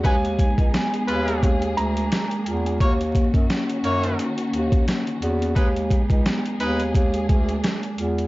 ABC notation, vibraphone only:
X:1
M:4/4
L:1/8
Q:"Swing 16ths" 1/4=87
K:Ebm
V:1 name="Vibraphone"
A, A, C2 A, A,2 F | B, B, D2 B, B,2 G | A, A, C2 A, A,2 F |]